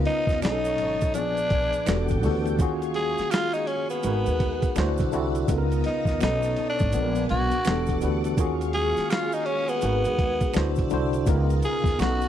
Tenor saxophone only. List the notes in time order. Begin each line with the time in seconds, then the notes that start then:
0.06 D#4
0.42 D#4
1.15 D4
2.96 G#4
3.31 F4
3.54 D#4
3.67 C#4
3.90 B3
5.86 D#4
6.22 D#4
6.70 D4
7.31 F#4
8.74 G#4
9.10 F4
9.34 D#4
9.46 C#4
9.69 B3
11.65 G#4
12.00 F#4